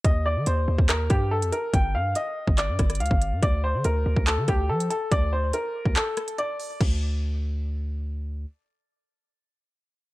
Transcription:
<<
  \new Staff \with { instrumentName = "Upright piano" } { \time 4/4 \key d \phrygian \tempo 4 = 142 ees''8 d''8 c''4 bes'8 g'8 a'8 bes'8 | g''8 f''8 ees''4 d''4 f''4 | d''8 c''8 bes'4 a'8 g'8 a'8 a'8 | d''8 c''8 bes'4 a'4 d''4 |
r1 | r1 | }
  \new Staff \with { instrumentName = "808-style bass" } { \clef bass \time 4/4 \key d \phrygian ees,8. ees16 ees,8 ees,16 ees,8. g,8. f,16 r8 | g,,8 g,8 r8. g,,8 g,16 g,,8 d,16 g,,8 g,16 | d,8. d16 d,8 d,16 d,8 d16 d,8 f8 r8 | d,4 r8. d,16 r2 |
d,1 | r1 | }
  \new DrumStaff \with { instrumentName = "Drums" } \drummode { \time 4/4 <hh bd>4 hh8. bd16 <hc hh>8 <hh bd ss>8 r16 hh16 hh8 | <hh bd>4 hh8. bd16 <hc hh>8 <hh bd ss>16 <hh ss>32 hh32 hh32 hh32 bd16 hh8 | <hh bd>4 hh8. bd16 <hc hh>8 <hh bd ss>8 r16 hh16 hh8 | <hh bd>4 hh8. bd16 <hc hh>8 <hh ss>16 hh16 hh8 hho8 |
<cymc bd>4 r4 r4 r4 | r4 r4 r4 r4 | }
>>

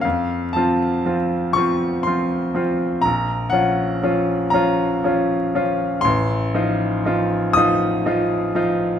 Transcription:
\new Staff \with { instrumentName = "Grand piano" } { \time 6/8 \key f \phrygian \tempo 4. = 40 << { f''8 a''4 des'''8 c'''4 | bes''8 ges''4 bes''4. | c'''4. ees'''4. | } \\ { f,8 <f c' f'>8 <f c' f'>8 <f c' f'>8 <f c' f'>8 <f c' f'>8 | bes,,8 <f des' f'>8 <f des' f'>8 <f des' f'>8 <f des' f'>8 <f des' f'>8 | a,,8 <f ees' f'>8 <f ees' f'>8 <f ees' f'>8 <f ees' f'>8 <f ees' f'>8 | } >> }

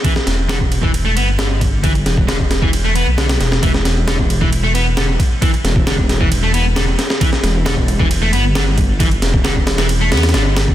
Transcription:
<<
  \new Staff \with { instrumentName = "Distorted electric guitar" } { \clef bass \time 4/4 \key e \minor \tempo 4 = 134 e16 r8. d16 r8 e16 r16 a16 b16 r16 d16 r8. | e16 r8. d16 r8 e16 r16 a16 b16 r16 d16 r8. | e16 r8. d16 r8 e16 r16 a16 b16 r16 d16 r8. | e16 r8. d16 r8 e16 r16 a16 b16 r16 d16 r8. |
e16 r8. d16 r8 e16 r16 a16 b16 r16 d16 r8. | e16 r8. d16 r8 e16 r16 a16 b16 r16 d16 r8. | }
  \new Staff \with { instrumentName = "Detuned saw bass" } { \clef bass \time 4/4 \key e \minor r8 e,,2 g,,4.~ | g,,8 e,,2~ e,,16 b,,8. e,,8 | e,,2.~ e,,8 r8 | r8 e,,2. r8 |
r8 e,,2 g,,4.~ | g,,8 e,,2 e,8 g,,4 | }
  \new DrumStaff \with { instrumentName = "Drums" } \drummode { \time 4/4 <bd cymr>16 sn16 <cymr sn>8 <cymr sn>16 bd16 cymr16 bd16 cymr8 cymr8 <cymr sn>8 <bd cymr>8 | <bd cymr>16 cymr16 <cymr sn>16 bd16 <cymr sn>16 bd16 <cymr sn>16 bd16 cymr8 cymr8 <cymr sn>16 <cymr sn>16 <cymr sn>16 sn16 | <bd cymr>16 sn16 <cymr sn>8 <cymr sn>16 bd16 cymr16 bd16 cymr8 cymr8 <cymr sn>8 <bd cymr>8 | <bd cymr>16 cymr16 <cymr sn>16 bd16 <cymr sn>16 bd16 <cymr sn>16 bd16 cymr8 cymr8 <cymr sn>8 <cymr sn>16 sn16 |
<bd cymr>16 sn16 <cymr sn>8 <cymr sn>16 bd16 cymr16 bd16 cymr8 cymr8 <cymr sn>8 <bd cymr>8 | <bd cymr>16 cymr16 <cymr sn>16 bd16 <cymr sn>16 bd16 <cymr sn>16 <cymr sn>16 cymr8 <cymr sn>32 <cymr sn>32 <cymr sn>32 <cymr sn>32 <cymr sn>8 <cymr sn>16 bd16 | }
>>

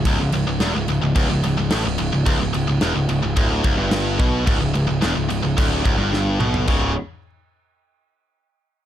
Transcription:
<<
  \new Staff \with { instrumentName = "Distorted electric guitar" } { \clef bass \time 4/4 \key cis \phrygian \tempo 4 = 108 cis,16 cis,16 cis,16 cis,16 e,16 cis,16 cis,16 cis,16 cis,16 cis,16 cis,16 cis,16 a,16 cis,16 cis,16 cis,16 | cis,16 cis,16 cis,16 cis,16 e,16 cis,16 cis,16 cis,16 d,8 cis,16 g,8. b,8 | cis,16 cis,16 cis,16 cis,16 e,16 cis,16 cis,16 cis,16 d,8 cis,16 g,8. b,8 | <cis, gis, cis>8 r2. r8 | }
  \new Staff \with { instrumentName = "Picked electric bass" } { \clef bass \time 4/4 \key cis \phrygian cis,,16 cis,,16 cis,,16 cis,,16 e,,16 cis,,16 cis,,16 cis,,16 cis,,16 cis,,16 cis,,16 cis,,16 a,,16 cis,,16 cis,,16 cis,,16 | cis,,16 cis,,16 cis,,16 cis,,16 e,,16 cis,,16 cis,,16 cis,,16 d,,8 cis,,16 g,,8. b,,8 | cis,,16 cis,,16 cis,,16 cis,,16 e,,16 cis,,16 cis,,16 cis,,16 d,,8 cis,,16 g,,8. b,,8 | cis,,8 r2. r8 | }
  \new DrumStaff \with { instrumentName = "Drums" } \drummode { \time 4/4 <cymc bd>8 cymc8 <cymc sn>8 cymc8 <cymc bd>8 cymc8 <cymc sn>8 cymc8 | <cymc bd>8 cymc8 <cymc sn>8 cymc8 <cymc bd>8 <cymc bd>8 <cymc sn>8 <cymc bd>8 | <cymc bd>8 cymc8 <cymc sn>8 cymc8 <cymc bd>8 <cymc bd>8 sn8 toml16 tomfh16 | <cymc bd>4 r4 r4 r4 | }
>>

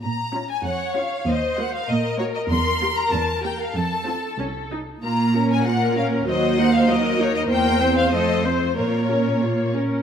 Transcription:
<<
  \new Staff \with { instrumentName = "Violin section" } { \time 2/4 \key bes \minor \tempo 4 = 96 bes''8. aes''16 ges''8 f''8 | ees''8 ges''16 f''16 ees''8 des''16 ees''16 | c'''8. bes''16 a''8 g''16 f''16 | a''4 r4 |
bes''8. aes''16 ges''8 f''8 | ees''8 ges''16 f''16 ees''8 des''16 ees''16 | g''8. f''16 ees''8 c''8 | bes'4 r4 | }
  \new Staff \with { instrumentName = "Violin section" } { \time 2/4 \key bes \minor r4 des''4 | c''4 bes'4~ | bes'2 | a'4. r8 |
r4 bes'4 | c''4 bes'4 | c''2 | des''4. r8 | }
  \new Staff \with { instrumentName = "Viola section" } { \time 2/4 \key bes \minor r8 <des' f'>8 r8 <des' f'>8 | r8 <bes ges'>8 r8 <bes ges'>8 | r8 <bes g'>8 r8 <bes g'>8 | r8 <c' f'>8 des'8 ees'8 |
<bes f'>8 <des' bes'>8 <bes f'>8 <des' bes'>8 | <ges ges'>8 <bes ees'>8 <ges ges'>8 <bes ees'>8 | <bes bes'>8 <c' c''>8 <a a'>8 <c' c''>8 | <bes f'>8 <des' bes'>8 <bes f'>8 <des' bes'>8 | }
  \new Staff \with { instrumentName = "Cello section" } { \clef bass \time 2/4 \key bes \minor bes,4 f,4 | ees,4 bes,4 | e,4 e,4 | f,4 c,4 |
bes,2 | ees,2 | e,4 f,4 | bes,4. r8 | }
>>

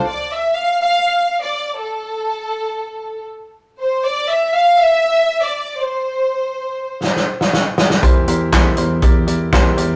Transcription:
<<
  \new Staff \with { instrumentName = "Violin section" } { \time 4/4 \key c \mixolydian \tempo 4 = 120 d''8 e''8 f''8 f''4~ f''16 d''8. a'8~ | a'2~ a'8 r4 c''8 | d''8 e''8 f''8 e''4~ e''16 d''8. c''8~ | c''2~ c''8 r4. |
r1 | }
  \new Staff \with { instrumentName = "Upright piano" } { \time 4/4 \key c \mixolydian r1 | r1 | r1 | r1 |
<e' g' bes' c''>8 <e' g' bes' c''>8 <e' g' bes' c''>8 <e' g' bes' c''>8 <e' g' bes' d''>8 <e' g' bes' d''>8 <e' g' bes' c''>8 <e' g' bes' d''>8 | }
  \new Staff \with { instrumentName = "Upright piano" } { \clef bass \time 4/4 \key c \mixolydian r1 | r1 | r1 | r1 |
e4. r2 r8 | }
  \new Staff \with { instrumentName = "Tine electric piano" } { \clef bass \time 4/4 \key c \mixolydian r1 | r1 | r1 | r1 |
e,8 e,8 e,8 e,8 e,8 e,8 e,8 e,8 | }
  \new DrumStaff \with { instrumentName = "Drums" } \drummode { \time 4/4 r4 r4 r4 r4 | r4 r4 r4 r4 | r4 r4 r4 r4 | r4 r4 sn16 sn8 sn16 sn8 sn16 sn16 |
<hh bd>8 hh8 <hc hh bd sn>8 hh8 <hh bd>8 hh8 <hc hh bd sn>8 hh8 | }
>>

